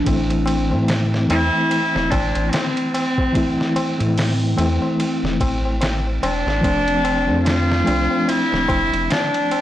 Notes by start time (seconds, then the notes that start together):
0.04 A1 E3 A3 C4, kick, ride, tabla na
0.09 E4
0.30 ride, tabla na
0.46 ride, tabla na
0.70 A2 E3 A3 C4, tabla na
0.74 E4
0.88 snare, ride, tabla na
1.12 snare, tabla na
1.28 E2 E3 A3 C4 E4, ride, tabla na
1.32 E4
1.53 tabla na
1.71 ride, tabla na
1.95 E1, snare, tabla na
2.10 A1 D4, kick, ride, tabla na
2.35 A1, ride, tabla na
2.50 C4, snare, ride, tabla na
2.77 ride, tabla na
2.94 C4, ride, tabla na
3.18 kick, tabla na
3.32 E3 A3 C4, kick, ride, tabla na
3.37 E4
3.58 snare, tabla na
3.76 ride, tabla na
3.98 A2 E3 A3 C4, ride, tabla na
4.02 E4
4.18 snare, open hi-hat, tabla na
4.41 tabla na
4.55 E2 E3 A3 C4, ride, tabla na
4.60 E4
4.82 tabla na
4.99 ride, tabla na
5.23 E1, snare, tabla na
5.40 A1, kick, ride, tabla na
5.65 tabla na
5.81 snare, ride, tabla na
6.07 tabla na
6.22 E1 D4, ride, tabla na
6.46 A1, snare, tabla na
6.61 F1 F3 A3 C4, kick, ride, tabla na
6.65 D4
6.87 ride, tabla na
7.04 ride, tabla na
7.26 F2 F3 A3 C4, tabla na
7.30 D4
7.45 F4, snare, ride, tabla na
7.70 snare, tabla na
7.84 C2 F3 A3 C4, ride, tabla na
7.88 D4
8.11 tabla na
8.28 E4, ride, tabla na
8.52 D1, snare, tabla na
8.68 F1, kick, ride, tabla na
8.92 F1, ride, tabla na
9.10 D4, snare, ride, tabla na
9.34 ride, tabla na
9.51 ride, tabla na